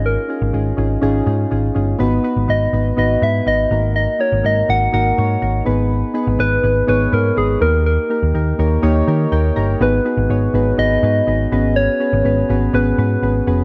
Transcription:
<<
  \new Staff \with { instrumentName = "Soft synth lead" } { \time 4/4 \key gis \minor \tempo 4 = 123 ais'4 r2. | r4 dis''4 dis''8 e''8 dis''4 | dis''8 cis''8 dis''8 fis''8 fis''4. r8 | r4 b'4 b'8 ais'8 gis'8 ais'8 |
ais'2. r4 | b'2 dis''2 | cis''2 b'4. r8 | }
  \new Staff \with { instrumentName = "Synth keys" } { \time 4/4 \key gis \minor << { r1 | r1 | r1 | r1 |
r4. cis''8 dis''4 g''8 ais''8 | r1 | r1 | } \\ { <cis' dis' eis' gis'>8 <cis' dis' eis' gis'>8 <cis' dis' eis' gis'>8 <cis' dis' eis' gis'>8 <cis' dis' eis' gis'>8 <cis' dis' eis' gis'>8 <cis' dis' eis' gis'>8 <cis' dis' eis' gis'>8 | <b dis' fis' b'>8 <b dis' fis' b'>8 <b dis' fis' b'>8 <b dis' fis' b'>8 <b dis' fis' b'>8 <b dis' fis' b'>8 <b dis' fis' b'>8 <ais dis' fis' ais'>8~ | <ais dis' fis' ais'>8 <ais dis' fis' ais'>8 <ais dis' fis' ais'>8 <ais dis' fis' ais'>8 <ais dis' fis' ais'>8 <ais dis' fis' cis''>8 <ais dis' fis' ais'>8 <b dis' gis' b'>8~ | <b dis' gis' b'>8 <b dis' gis' b'>8 <b dis' gis' b'>8 <b dis' gis' b'>8 <b dis' gis' cis''>8 <b dis' gis' b'>8 <b dis' gis' b'>8 <ais dis' g' ais'>8~ |
<ais dis' g' ais'>8 <ais dis' g' ais'>8 <ais dis' g' ais'>8 <ais dis' g' ais'>8 <ais dis' g' cis''>8 <ais dis' g' ais'>8 <ais dis' g' ais'>8 <ais dis' g' ais'>8 | <b dis' fis' gis' b'>8 <b dis' fis' gis' b'>8 <b dis' fis' gis' cis''>8 <b dis' fis' gis' b'>8 <b dis' fis' gis' b'>8 <b dis' fis' gis' b'>8 <b dis' fis' gis' b'>8 <b cis' fis' gis' b'>8~ | <b cis' fis' gis' b'>8 <b cis' fis' gis' b'>8 <b cis' fis' gis' b'>8 <b cis' fis' gis' b'>8 <b cis' fis' gis' b'>8 <b cis' fis' gis' b'>8 <b cis' fis' gis' b'>8 <b cis' fis' gis' b'>8 | } >> }
  \new Staff \with { instrumentName = "Picked electric bass" } { \clef bass \time 4/4 \key gis \minor gis,,8 r16 gis,,16 gis,,8 gis,,8 gis,,8 gis,8 gis,,8 g,,8 | gis,,8 r16 gis,,16 gis,,8 gis,,8 gis,,8 gis,8 gis,,8 gis,,8~ | gis,,8 r16 gis,,16 gis,,8 gis,,8 gis,,8 gis,8 gis,,8 gis,,8~ | gis,,8 r16 gis,,16 gis,,8 gis,,8 gis,,8 gis,8 gis,,8 dis,8~ |
dis,8 r16 dis,16 dis,8 dis,8 dis,8 dis8 dis,8 g,,8 | gis,,8 r16 gis,,16 gis,,8 gis,,8 gis,,8 gis,8 gis,,8 gis,,8~ | gis,,8 r16 gis,,16 gis,,8 gis,,8 gis,,8 gis,8 gis,,8 eis,,8 | }
>>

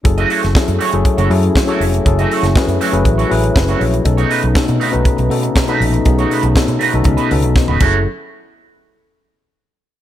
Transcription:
<<
  \new Staff \with { instrumentName = "Clean electric guitar" } { \time 4/4 \key fis \dorian \tempo 4 = 120 r16 <a e' fis' dis''>16 <a e' fis' cis''>16 r8. <a e' fis' cis''>8 r16 <a e' fis' cis''>8 r8 <a e' fis' cis''>8 r16 | r16 <a e' fis' dis''>16 <a e' fis' cis''>16 r8. <a e' fis' cis''>8 r16 <a e' fis' cis''>8 r8 <a e' fis' cis''>8 r16 | r16 <a dis' fis' cis''>16 <a dis' fis' b'>16 r8. <a dis' fis' b'>8 r4 r16 <a dis' fis' b'>8 r16 | r16 <a dis' fis' cis''>16 <a dis' fis' b'>16 r8. <a dis' fis' b'>8 r16 <a dis' fis' b'>8 r8 <a dis' fis' b'>16 <a e' fis' cis''>16 r16 |
r1 | }
  \new Staff \with { instrumentName = "Tine electric piano" } { \time 4/4 \key fis \dorian << { r1 | r2. <fis' b'>8 <gis' cis''>8~ | <gis' cis''>8 r2. r8 | r2. <a' dis''>8 r8 |
r1 | } \\ { <fis cis' e' gis' a'>8. r16 <fis cis' e' gis' a'>8 r16 <fis cis' e' gis' a'>8 r16 <fis cis' e' gis' a'>8 r16 <fis cis' e' gis' a'>8 r16 | <fis cis' e' gis' a'>8. r16 <fis cis' e' gis' b'>8 r16 <fis cis' e' gis' b'>8 r16 <fis cis' e' gis' b'>8 r4 | <b, b cis' dis' a'>8. r16 <b, b cis' dis' a'>8 r16 <b, b cis' dis' b'>8 r16 <b, b cis' dis' a'>8 r16 <b, b cis' dis' a'>8 r16 | <b, b cis' dis' gis'>8. r16 <b, b cis' dis' a'>8 r16 <b, b cis' dis' a'>8 r16 <b, b cis' dis' a'>8 r8 <fis cis' e' gis' a'>8 |
r1 | } >> }
  \new Staff \with { instrumentName = "French horn section" } { \time 4/4 \key fis \dorian << { <fis e'>1~ | <fis e'>1 | b1 | cis'2.~ cis'8 <fis cis' e' a'>8 |
r1 | } \\ { <a cis'>1~ | <a cis'>1 | <a dis'>1~ | <a dis'>2.~ <a dis'>8 r8 |
r1 | } >> }
  \new Staff \with { instrumentName = "Fingered electric bass" } { \clef bass \time 4/4 \key fis \dorian fis,,8 r16 fis,,16 r16 fis,16 r16 fis,,16 r16 fis,,16 fis,8 r8 eis,,8 | fis,,8 r16 fis,,16 r16 fis,16 r16 fis,,16 a,,8 a,,8 fis,,8 ais,,8 | b,,8 r16 b,,16 r16 b,16 r16 b,,16 r16 b,,16 b,8 r8 ais,,8 | b,,8 r16 b,,16 r16 b,16 r16 b,,16 cis,16 r16 cis,16 b,,16 r16 dis,,16 fis,,8 |
r1 | }
  \new DrumStaff \with { instrumentName = "Drums" } \drummode { \time 4/4 <hh bd>16 hh16 hho16 <hh sn>16 <bd sn>16 hh16 hho16 hh16 <hh bd>16 hh16 hho16 hh16 <bd sn>16 hh16 hho16 hh16 | <hh bd>16 hh16 hho16 <hh sn>16 <bd sn>16 hh16 hho16 hh16 <hh bd>16 hh16 hho16 hh16 <bd sn>16 hh16 hho16 hh16 | <hh bd>16 hh16 hho16 hh16 <bd sn>16 hh16 hho16 hh16 <hh bd>16 hh16 hho16 hh16 <bd sn>16 hh16 hho16 hh16 | <hh bd>16 hh16 hho16 hh16 <bd sn>16 hh16 hho16 hh16 <hh bd>16 hh16 hho16 hh16 <bd sn>16 tommh16 <cymc bd>8 |
r4 r4 r4 r4 | }
>>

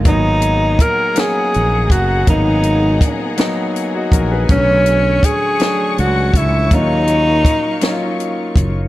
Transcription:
<<
  \new Staff \with { instrumentName = "String section" } { \time 6/8 \key gis \minor \tempo 4. = 54 << { gis''2.~ | gis''2. | cis'''2.~ | cis'''2. | } \\ { <gis' fis'' ais''>2.~ | <gis' fis'' ais''>2. | <a cis''>2. | <fis dis'' eis''>2. | } >> }
  \new Staff \with { instrumentName = "Tenor saxophone" } { \time 6/8 \key gis \minor dis'4 ais'8 gis'4 fis'8 | dis'4. r4. | cis'4 gis'4 fis'8 e'8 | dis'2 r4 | }
  \new Staff \with { instrumentName = "Clean electric guitar" } { \time 6/8 \key gis \minor <gis eis'>16 r2 r8. | r2. | r2. | r2. | }
  \new Staff \with { instrumentName = "Grand piano" } { \time 6/8 \key gis \minor r2. | r2 r16 <dis' fis'>16 <fis' ais'>16 <gis' b'>16~ | <gis' b'>16 r2 r8. | r2. | }
  \new Staff \with { instrumentName = "Grand piano" } { \time 6/8 \key gis \minor <fis ais b dis'>4. <fis ais b cis'>4. | <fis ais b dis'>4. <fis ais b dis'>4. | <d fis a cis'>4. <fis a cis' d'>4. | <fis ais cis' eis'>4. <fis ais cis' dis' eis'>4. | }
  \new Staff \with { instrumentName = "Fretless electric bass" } { \clef bass \time 6/8 \key gis \minor gis,,4 r4 ais,,8 fis,,8 | gis,,4 r4. ais,,8 | b,,4 r4 cis,8 cis,8 | dis,4 r4. fis,,8 | }
  \new DrumStaff \with { instrumentName = "Drums" } \drummode { \time 6/8 <hh bd>8 hh8 <hh bd>8 <hh sn>8 hh8 <hh bd>8 | <hh bd>8 hh8 <hh bd>8 <hh sn>8 hh8 <hh bd>8 | <hh bd>8 hh8 <hh bd>8 <hh sn>8 hh8 <hh bd>8 | <hh bd>8 hh8 <hh bd>8 <hh sn>8 hh8 <hh bd>8 | }
>>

